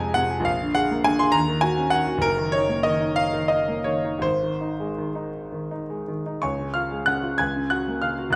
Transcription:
Already playing: F2 C3 G#4 G#5 A#5
0.00 G#3
0.14 C3 F#5
0.31 G#4
0.40 A#1
0.45 F5
0.61 D3
0.75 G#4 F#5
0.91 A#3
1.04 D3 G#5
1.19 G#4 C6
1.32 D#2 A#5
1.48 D#3
1.61 F#4 G#5
1.78 C#4
1.90 D#3 F#5
2.07 F#4
2.18 F#1 A#4
2.37 D#3
2.52 D#4 C#5
2.69 A#3
2.83 D#3 D#5
3.01 D#4
3.16 F5
3.33 D#3
3.48 D#4 D#5
3.68 A#3
3.84 D#3 C#5
4.05 D#4
4.18 G#1 C5
4.43 D#3
4.61 D#4
4.80 G#3
4.98 D#3
5.15 D#4
5.52 D#3
5.71 D#4
5.90 G#3
6.08 D#3
6.26 D#4
6.42 C#2 C#5 G#5 C#6
6.59 C#3
6.74 F4 F5 F6
6.91 G#3
7.06 C#3 F#5 F#6
7.23 F4
7.38 C#2 G#5 G#6
7.56 C#3
7.70 F#4 F#5 F#6
7.88 A#3
8.02 C#3 F5 F6
8.19 F#4
8.30 C2 F#6

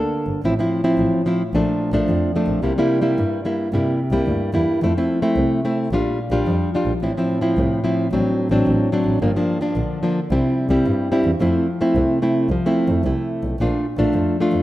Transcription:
Already playing: D3 A#3 D4 A4
0.27 G1
0.43 A1 A2 F3 C4 E4
0.59 F3 C4 E4
0.84 F3 C4 E4
0.98 A1 A2
1.26 F3 C4 E4
1.53 A#1 A#2 F3 A3 D4
1.92 A#1 F3 A3 D4
2.09 F2
2.36 F3 A3 D4
2.47 A#1
2.63 C2 C3 G3 A#3 E4
2.78 G3 A#3 E4
3.02 G3 A#3 E4
3.18 G2
3.45 G3 A#3 E4
3.72 G2 C3 G3 A#3 E4
4.11 C2 G3 A#3 E4
4.27 D2 G2
4.53 E2 G3 A#3 E4
4.82 F2 F3 A3 C4 E4
4.98 A3 C4 E4
5.22 A3 C4 E4
5.36 C2 C3
5.65 A3 C4 E4
5.91 A#1 A#2 G3 D4 F4
6.31 A#1 G3 D4 F4
6.47 F2 F3
6.75 G3 D4 F4
6.86 A#1
7.02 A1 A2 F3 C4 E4
7.18 F3 C4 E4
7.41 F3 C4 E4
7.57 C2 A2
7.84 F3 C4 E4
8.12 A1 A2 F#3 C4 D4
8.50 A1 F#3 C4 D4
8.66 A1 A2
8.92 F#3 C4 D4
9.05 A1
9.21 G1 G2 F3 A#3 D4
9.37 F3 A#3 D4
9.61 F3 A#3 D4
9.76 A#1 D3
10.03 F3 A#3 D4
10.31 C2 C3 G3 C4 E4
10.70 C2 G3 C4 E4
10.86 G2
11.12 G3 C4 E4
11.24 E2
11.40 F2 F3 A3 C4 E4
11.81 A3 C4 E4
11.95 C2 C3
12.22 A3 C4 E4
12.49 C2 F3
12.66 A3 C4 E4
12.88 F2
13.04 C2 C3 A3 C4 E4
13.44 B1
13.59 A#1 A#2 A3 D4 F4
13.98 A#1 A3 D4 F4
14.14 F2 F3
14.40 A3 D4 F4
14.52 F2

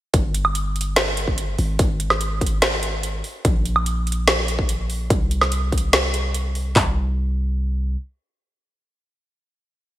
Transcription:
0.14 G1, kick, closed hi-hat
0.34 closed hi-hat
0.45 high woodblock
0.55 closed hi-hat
0.76 closed hi-hat
0.81 closed hi-hat
0.96 snare, closed hi-hat
1.17 closed hi-hat
1.28 kick
1.38 closed hi-hat
1.58 G#1, open hi-hat
1.79 kick, closed hi-hat
2.00 closed hi-hat
2.10 snare, high woodblock
2.21 closed hi-hat
2.41 kick, closed hi-hat
2.46 closed hi-hat
2.62 snare, closed hi-hat
2.83 closed hi-hat
3.03 closed hi-hat
3.24 open hi-hat
3.45 A#1, kick, closed hi-hat
3.65 closed hi-hat
3.76 high woodblock
3.86 closed hi-hat
4.07 closed hi-hat
4.12 closed hi-hat
4.28 snare, closed hi-hat
4.48 closed hi-hat
4.59 kick
4.69 closed hi-hat
4.90 open hi-hat
5.10 C2, kick, closed hi-hat
5.31 closed hi-hat
5.41 snare, high woodblock
5.52 closed hi-hat
5.72 kick, closed hi-hat
5.78 closed hi-hat
5.93 snare, closed hi-hat
6.14 closed hi-hat
6.34 closed hi-hat
6.55 open hi-hat
6.76 C2, kick, clap, floor tom

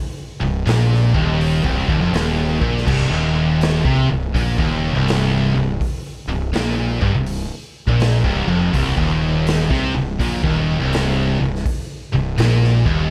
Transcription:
0.41 C1 C2
0.66 A#1 A#2, snare, open hi-hat
0.94 snare
1.14 D#1 D#2, kick
1.41 open hi-hat
1.63 C1 C2, kick
1.88 D#1 D#2, kick
2.00 F1 F2
2.13 D#1 D#2, snare, open hi-hat
2.61 A#1 A#2, kick
2.77 snare
2.87 C1 C2, kick, crash
3.11 D#1 D#2
3.61 snare, open hi-hat
3.85 C2 C3, kick
4.08 C1 C2
4.34 A#1 A#2, kick, open hi-hat
4.58 D#1 D#2, kick
4.95 C1 C2
5.08 snare, open hi-hat
5.56 C1 C2
5.81 kick, open hi-hat
6.28 C1 C2
6.52 A#1 A#2, snare, open hi-hat
7.02 G1 G2, kick
7.14 C1 C2
7.26 open hi-hat
7.87 A#1 A#2, kick
8.00 snare, open hi-hat
8.24 C1 C2, kick
8.47 F1 F2
8.73 C1 C2, kick, open hi-hat
8.97 D#1 D#2, kick
9.47 snare, open hi-hat
9.70 C2 C3, kick, snare
9.95 C1 C2
10.20 A#1 A#2, kick, open hi-hat
10.43 D#1 D#2, kick
10.80 C1 C2
10.93 snare, open hi-hat
11.41 C1 C2
11.55 snare
11.66 kick, open hi-hat
12.14 C1 C2
12.38 A#1 A#2, snare, open hi-hat
12.64 snare
12.86 D#1 D#2, kick

